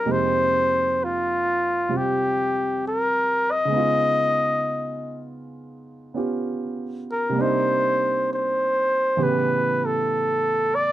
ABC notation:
X:1
M:4/4
L:1/8
Q:"Swing" 1/4=66
K:Fdor
V:1 name="Flugelhorn"
c2 F2 G2 B e- | e3 z4 B | c2 c2 =B =A2 d |]
V:2 name="Grand piano"
[F,,C,A,B,EG]4 [C,G,CF]4 | [_D,A,_CEF]4- [D,A,CEF] [C_DFG]3 | [C,G,B,DE]4 [=A,,^C,=E,=B,G]4 |]